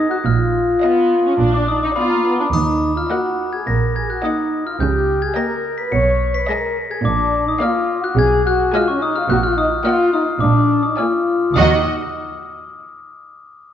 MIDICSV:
0, 0, Header, 1, 9, 480
1, 0, Start_track
1, 0, Key_signature, -6, "minor"
1, 0, Tempo, 570885
1, 203, Time_signature, 4, 2, 24, 8
1, 3084, Tempo, 561272
1, 8364, Tempo, 568182
1, 11654, End_track
2, 0, Start_track
2, 0, Title_t, "Glockenspiel"
2, 0, Program_c, 0, 9
2, 90, Note_on_c, 0, 90, 53
2, 199, Note_off_c, 0, 90, 0
2, 215, Note_on_c, 0, 89, 53
2, 1261, Note_off_c, 0, 89, 0
2, 1296, Note_on_c, 0, 86, 45
2, 1404, Note_off_c, 0, 86, 0
2, 1415, Note_on_c, 0, 87, 51
2, 1523, Note_off_c, 0, 87, 0
2, 1538, Note_on_c, 0, 86, 45
2, 1645, Note_off_c, 0, 86, 0
2, 1647, Note_on_c, 0, 83, 49
2, 1758, Note_off_c, 0, 83, 0
2, 1767, Note_on_c, 0, 82, 41
2, 1879, Note_off_c, 0, 82, 0
2, 1889, Note_on_c, 0, 83, 45
2, 2000, Note_off_c, 0, 83, 0
2, 2012, Note_on_c, 0, 86, 38
2, 2121, Note_off_c, 0, 86, 0
2, 2132, Note_on_c, 0, 87, 51
2, 2463, Note_off_c, 0, 87, 0
2, 2500, Note_on_c, 0, 89, 47
2, 2605, Note_off_c, 0, 89, 0
2, 2613, Note_on_c, 0, 90, 53
2, 2943, Note_off_c, 0, 90, 0
2, 2964, Note_on_c, 0, 92, 47
2, 3075, Note_off_c, 0, 92, 0
2, 3085, Note_on_c, 0, 94, 55
2, 3309, Note_off_c, 0, 94, 0
2, 3333, Note_on_c, 0, 92, 51
2, 3441, Note_off_c, 0, 92, 0
2, 3453, Note_on_c, 0, 90, 46
2, 3561, Note_off_c, 0, 90, 0
2, 3574, Note_on_c, 0, 87, 53
2, 3906, Note_off_c, 0, 87, 0
2, 3937, Note_on_c, 0, 89, 45
2, 4045, Note_off_c, 0, 89, 0
2, 4055, Note_on_c, 0, 91, 50
2, 4387, Note_off_c, 0, 91, 0
2, 4412, Note_on_c, 0, 92, 51
2, 4521, Note_off_c, 0, 92, 0
2, 4532, Note_on_c, 0, 94, 55
2, 4863, Note_off_c, 0, 94, 0
2, 4887, Note_on_c, 0, 95, 48
2, 4998, Note_off_c, 0, 95, 0
2, 5008, Note_on_c, 0, 97, 57
2, 5343, Note_off_c, 0, 97, 0
2, 5371, Note_on_c, 0, 95, 57
2, 5481, Note_off_c, 0, 95, 0
2, 5492, Note_on_c, 0, 94, 60
2, 5824, Note_off_c, 0, 94, 0
2, 5856, Note_on_c, 0, 92, 51
2, 5963, Note_off_c, 0, 92, 0
2, 5976, Note_on_c, 0, 86, 59
2, 6307, Note_off_c, 0, 86, 0
2, 6347, Note_on_c, 0, 87, 53
2, 6449, Note_off_c, 0, 87, 0
2, 6465, Note_on_c, 0, 89, 60
2, 6791, Note_off_c, 0, 89, 0
2, 6821, Note_on_c, 0, 90, 61
2, 6926, Note_off_c, 0, 90, 0
2, 6947, Note_on_c, 0, 92, 62
2, 7161, Note_off_c, 0, 92, 0
2, 7187, Note_on_c, 0, 90, 75
2, 7400, Note_off_c, 0, 90, 0
2, 7426, Note_on_c, 0, 89, 73
2, 7528, Note_off_c, 0, 89, 0
2, 7537, Note_on_c, 0, 85, 53
2, 7644, Note_off_c, 0, 85, 0
2, 7661, Note_on_c, 0, 87, 65
2, 7765, Note_off_c, 0, 87, 0
2, 7775, Note_on_c, 0, 89, 57
2, 7882, Note_off_c, 0, 89, 0
2, 7897, Note_on_c, 0, 90, 70
2, 8003, Note_off_c, 0, 90, 0
2, 8013, Note_on_c, 0, 89, 63
2, 8121, Note_off_c, 0, 89, 0
2, 8138, Note_on_c, 0, 87, 71
2, 8356, Note_off_c, 0, 87, 0
2, 8369, Note_on_c, 0, 89, 63
2, 8589, Note_off_c, 0, 89, 0
2, 8613, Note_on_c, 0, 87, 67
2, 8831, Note_off_c, 0, 87, 0
2, 8842, Note_on_c, 0, 86, 61
2, 9178, Note_off_c, 0, 86, 0
2, 9200, Note_on_c, 0, 87, 53
2, 9314, Note_off_c, 0, 87, 0
2, 9324, Note_on_c, 0, 89, 57
2, 9776, Note_off_c, 0, 89, 0
2, 9796, Note_on_c, 0, 87, 60
2, 10068, Note_off_c, 0, 87, 0
2, 11654, End_track
3, 0, Start_track
3, 0, Title_t, "Violin section"
3, 0, Program_c, 1, 48
3, 692, Note_on_c, 1, 77, 51
3, 1048, Note_off_c, 1, 77, 0
3, 1665, Note_on_c, 1, 77, 48
3, 2014, Note_off_c, 1, 77, 0
3, 2619, Note_on_c, 1, 78, 48
3, 2969, Note_off_c, 1, 78, 0
3, 3574, Note_on_c, 1, 78, 48
3, 3929, Note_off_c, 1, 78, 0
3, 4529, Note_on_c, 1, 79, 49
3, 4884, Note_off_c, 1, 79, 0
3, 5496, Note_on_c, 1, 80, 57
3, 5849, Note_off_c, 1, 80, 0
3, 6453, Note_on_c, 1, 77, 59
3, 6807, Note_off_c, 1, 77, 0
3, 7409, Note_on_c, 1, 80, 69
3, 7764, Note_off_c, 1, 80, 0
3, 8372, Note_on_c, 1, 78, 66
3, 8724, Note_off_c, 1, 78, 0
3, 9328, Note_on_c, 1, 80, 52
3, 9688, Note_off_c, 1, 80, 0
3, 9812, Note_on_c, 1, 78, 51
3, 10077, Note_off_c, 1, 78, 0
3, 11654, End_track
4, 0, Start_track
4, 0, Title_t, "Violin section"
4, 0, Program_c, 2, 48
4, 688, Note_on_c, 2, 75, 50
4, 1046, Note_off_c, 2, 75, 0
4, 1653, Note_on_c, 2, 74, 46
4, 2007, Note_off_c, 2, 74, 0
4, 2606, Note_on_c, 2, 75, 42
4, 2962, Note_off_c, 2, 75, 0
4, 3573, Note_on_c, 2, 75, 46
4, 3928, Note_off_c, 2, 75, 0
4, 4532, Note_on_c, 2, 75, 45
4, 4885, Note_off_c, 2, 75, 0
4, 5495, Note_on_c, 2, 75, 56
4, 5848, Note_off_c, 2, 75, 0
4, 6454, Note_on_c, 2, 74, 51
4, 6808, Note_off_c, 2, 74, 0
4, 7420, Note_on_c, 2, 75, 68
4, 7770, Note_off_c, 2, 75, 0
4, 8371, Note_on_c, 2, 75, 54
4, 8724, Note_off_c, 2, 75, 0
4, 9316, Note_on_c, 2, 74, 51
4, 9682, Note_off_c, 2, 74, 0
4, 9810, Note_on_c, 2, 75, 50
4, 10076, Note_off_c, 2, 75, 0
4, 11654, End_track
5, 0, Start_track
5, 0, Title_t, "French horn section"
5, 0, Program_c, 3, 60
5, 81, Note_on_c, 3, 66, 62
5, 136, Note_off_c, 3, 66, 0
5, 208, Note_on_c, 3, 65, 66
5, 1269, Note_off_c, 3, 65, 0
5, 1298, Note_on_c, 3, 62, 55
5, 1407, Note_on_c, 3, 63, 59
5, 1413, Note_off_c, 3, 62, 0
5, 1525, Note_off_c, 3, 63, 0
5, 1540, Note_on_c, 3, 62, 52
5, 1651, Note_off_c, 3, 62, 0
5, 1656, Note_on_c, 3, 59, 52
5, 1769, Note_off_c, 3, 59, 0
5, 1787, Note_on_c, 3, 58, 50
5, 1895, Note_off_c, 3, 58, 0
5, 1900, Note_on_c, 3, 59, 52
5, 2011, Note_off_c, 3, 59, 0
5, 2022, Note_on_c, 3, 62, 51
5, 2072, Note_off_c, 3, 62, 0
5, 2128, Note_on_c, 3, 63, 57
5, 2479, Note_off_c, 3, 63, 0
5, 2495, Note_on_c, 3, 65, 54
5, 2608, Note_off_c, 3, 65, 0
5, 2612, Note_on_c, 3, 66, 59
5, 2961, Note_off_c, 3, 66, 0
5, 2982, Note_on_c, 3, 68, 48
5, 3081, Note_on_c, 3, 70, 62
5, 3090, Note_off_c, 3, 68, 0
5, 3319, Note_off_c, 3, 70, 0
5, 3336, Note_on_c, 3, 68, 57
5, 3449, Note_off_c, 3, 68, 0
5, 3455, Note_on_c, 3, 66, 51
5, 3562, Note_on_c, 3, 63, 57
5, 3571, Note_off_c, 3, 66, 0
5, 3925, Note_off_c, 3, 63, 0
5, 3939, Note_on_c, 3, 65, 56
5, 4042, Note_on_c, 3, 67, 60
5, 4051, Note_off_c, 3, 65, 0
5, 4398, Note_off_c, 3, 67, 0
5, 4418, Note_on_c, 3, 68, 65
5, 4532, Note_off_c, 3, 68, 0
5, 4533, Note_on_c, 3, 70, 77
5, 4882, Note_off_c, 3, 70, 0
5, 4901, Note_on_c, 3, 71, 64
5, 5012, Note_on_c, 3, 73, 79
5, 5014, Note_off_c, 3, 71, 0
5, 5363, Note_off_c, 3, 73, 0
5, 5379, Note_on_c, 3, 71, 66
5, 5493, Note_off_c, 3, 71, 0
5, 5495, Note_on_c, 3, 70, 62
5, 5745, Note_off_c, 3, 70, 0
5, 5850, Note_on_c, 3, 68, 66
5, 5903, Note_off_c, 3, 68, 0
5, 5967, Note_on_c, 3, 62, 76
5, 6320, Note_off_c, 3, 62, 0
5, 6337, Note_on_c, 3, 63, 68
5, 6452, Note_off_c, 3, 63, 0
5, 6455, Note_on_c, 3, 65, 82
5, 6804, Note_off_c, 3, 65, 0
5, 6812, Note_on_c, 3, 66, 74
5, 6927, Note_on_c, 3, 68, 91
5, 6929, Note_off_c, 3, 66, 0
5, 7166, Note_off_c, 3, 68, 0
5, 7174, Note_on_c, 3, 66, 74
5, 7405, Note_off_c, 3, 66, 0
5, 7417, Note_on_c, 3, 65, 74
5, 7531, Note_off_c, 3, 65, 0
5, 7548, Note_on_c, 3, 61, 67
5, 7649, Note_on_c, 3, 63, 81
5, 7655, Note_off_c, 3, 61, 0
5, 7765, Note_off_c, 3, 63, 0
5, 7792, Note_on_c, 3, 65, 71
5, 7840, Note_off_c, 3, 65, 0
5, 7904, Note_on_c, 3, 66, 82
5, 7953, Note_off_c, 3, 66, 0
5, 8028, Note_on_c, 3, 65, 70
5, 8077, Note_off_c, 3, 65, 0
5, 8133, Note_on_c, 3, 63, 76
5, 8240, Note_off_c, 3, 63, 0
5, 8372, Note_on_c, 3, 65, 92
5, 8603, Note_off_c, 3, 65, 0
5, 8615, Note_on_c, 3, 63, 76
5, 8720, Note_off_c, 3, 63, 0
5, 8847, Note_on_c, 3, 62, 83
5, 9198, Note_off_c, 3, 62, 0
5, 9222, Note_on_c, 3, 63, 58
5, 9331, Note_off_c, 3, 63, 0
5, 9331, Note_on_c, 3, 65, 56
5, 9804, Note_off_c, 3, 65, 0
5, 9825, Note_on_c, 3, 63, 61
5, 10019, Note_off_c, 3, 63, 0
5, 11654, End_track
6, 0, Start_track
6, 0, Title_t, "Viola section"
6, 0, Program_c, 4, 48
6, 690, Note_on_c, 4, 59, 56
6, 1025, Note_off_c, 4, 59, 0
6, 1060, Note_on_c, 4, 61, 46
6, 1166, Note_on_c, 4, 62, 54
6, 1174, Note_off_c, 4, 61, 0
6, 1520, Note_off_c, 4, 62, 0
6, 1541, Note_on_c, 4, 63, 46
6, 1587, Note_off_c, 4, 63, 0
6, 1648, Note_on_c, 4, 65, 58
6, 2000, Note_off_c, 4, 65, 0
6, 2017, Note_on_c, 4, 62, 44
6, 2063, Note_off_c, 4, 62, 0
6, 2606, Note_on_c, 4, 58, 49
6, 2962, Note_off_c, 4, 58, 0
6, 3568, Note_on_c, 4, 58, 47
6, 3925, Note_off_c, 4, 58, 0
6, 4528, Note_on_c, 4, 58, 49
6, 4884, Note_off_c, 4, 58, 0
6, 5490, Note_on_c, 4, 56, 50
6, 5846, Note_off_c, 4, 56, 0
6, 6458, Note_on_c, 4, 58, 60
6, 6810, Note_off_c, 4, 58, 0
6, 7409, Note_on_c, 4, 56, 60
6, 7764, Note_off_c, 4, 56, 0
6, 8366, Note_on_c, 4, 58, 65
6, 8721, Note_off_c, 4, 58, 0
6, 9328, Note_on_c, 4, 58, 52
6, 9688, Note_off_c, 4, 58, 0
6, 9812, Note_on_c, 4, 66, 56
6, 10077, Note_off_c, 4, 66, 0
6, 11654, End_track
7, 0, Start_track
7, 0, Title_t, "Cello section"
7, 0, Program_c, 5, 48
7, 203, Note_on_c, 5, 46, 58
7, 585, Note_off_c, 5, 46, 0
7, 1170, Note_on_c, 5, 46, 57
7, 1549, Note_off_c, 5, 46, 0
7, 2133, Note_on_c, 5, 51, 52
7, 2508, Note_off_c, 5, 51, 0
7, 3083, Note_on_c, 5, 46, 47
7, 3464, Note_off_c, 5, 46, 0
7, 4048, Note_on_c, 5, 49, 55
7, 4427, Note_off_c, 5, 49, 0
7, 5005, Note_on_c, 5, 47, 52
7, 5386, Note_off_c, 5, 47, 0
7, 5965, Note_on_c, 5, 46, 65
7, 6345, Note_off_c, 5, 46, 0
7, 6929, Note_on_c, 5, 47, 63
7, 7307, Note_off_c, 5, 47, 0
7, 7887, Note_on_c, 5, 46, 71
7, 8266, Note_off_c, 5, 46, 0
7, 8846, Note_on_c, 5, 46, 64
7, 9224, Note_off_c, 5, 46, 0
7, 9805, Note_on_c, 5, 51, 53
7, 10073, Note_off_c, 5, 51, 0
7, 11654, End_track
8, 0, Start_track
8, 0, Title_t, "Double bass section"
8, 0, Program_c, 6, 48
8, 202, Note_on_c, 6, 34, 62
8, 584, Note_off_c, 6, 34, 0
8, 1169, Note_on_c, 6, 34, 59
8, 1548, Note_off_c, 6, 34, 0
8, 2128, Note_on_c, 6, 39, 57
8, 2506, Note_off_c, 6, 39, 0
8, 3084, Note_on_c, 6, 34, 51
8, 3465, Note_off_c, 6, 34, 0
8, 4049, Note_on_c, 6, 37, 59
8, 4427, Note_off_c, 6, 37, 0
8, 5007, Note_on_c, 6, 35, 57
8, 5387, Note_off_c, 6, 35, 0
8, 5971, Note_on_c, 6, 34, 64
8, 6349, Note_off_c, 6, 34, 0
8, 6928, Note_on_c, 6, 35, 63
8, 7306, Note_off_c, 6, 35, 0
8, 7882, Note_on_c, 6, 34, 77
8, 8263, Note_off_c, 6, 34, 0
8, 8844, Note_on_c, 6, 34, 66
8, 9223, Note_off_c, 6, 34, 0
8, 9808, Note_on_c, 6, 39, 59
8, 10075, Note_off_c, 6, 39, 0
8, 11654, End_track
9, 0, Start_track
9, 0, Title_t, "Drums"
9, 2132, Note_on_c, 9, 81, 34
9, 2216, Note_off_c, 9, 81, 0
9, 11654, End_track
0, 0, End_of_file